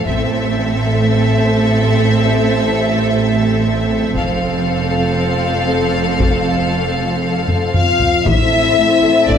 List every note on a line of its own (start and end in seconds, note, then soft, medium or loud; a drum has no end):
0.05 4.12 A1 medium
0.05 4.12 A2 medium
0.05 4.12 C4 medium
0.05 4.12 A4 soft
0.05 4.12 E5 medium
0.05 taiko medium
4.14 8.05 F1 soft
4.14 8.06 F2 medium
4.14 8.01 C4 soft
4.14 7.71 A4 soft
4.14 7.71 F5 soft
4.14 taiko soft
6.20 taiko medium
7.49 taiko low-mid medium
7.74 8.23 F4 medium
7.74 8.22 F5 soft
7.74 8.23 F5 medium
7.74 taiko low-mid medium
8.00 taiko low medium
8.24 8.34 A1 medium
8.24 8.98 A2 medium
8.24 8.33 A2 medium
8.24 9.38 A2 medium
8.24 9.38 A3 medium
8.24 9.38 C4 medium
8.24 9.38 E4 medium
8.24 9.27 E4 medium
8.24 9.38 A4 medium
8.24 9.38 C5 medium
8.24 9.28 E5 medium
8.24 9.27 E5 medium
8.24 taiko medium
8.77 8.86 A1 soft
8.77 8.85 A2 soft
9.02 9.10 A1 soft
9.02 9.11 A2 soft
9.28 9.36 A1 medium
9.28 9.36 A2 medium
9.28 9.38 A3 soft
9.28 9.38 D4 medium
9.28 9.38 D5 medium
9.28 taiko medium